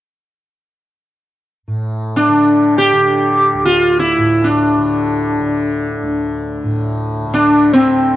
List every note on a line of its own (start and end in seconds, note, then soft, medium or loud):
1.68 4.17 A2 soft
2.16 2.75 D4 medium
2.29 2.93 D3 soft
2.78 3.65 G4 medium
2.93 4.78 D3 soft
3.54 6.02 D2 soft
3.65 3.99 F4 medium
3.99 4.46 E4 medium
4.18 6.63 A2 soft
4.44 6.05 D4 medium
4.78 5.40 D3 soft
5.40 7.26 D3 soft
6.03 8.16 D2 soft
6.64 8.16 A2 soft
7.26 7.87 D3 medium
7.34 7.73 D4 medium
7.73 8.16 C4 medium
7.87 8.16 D3 soft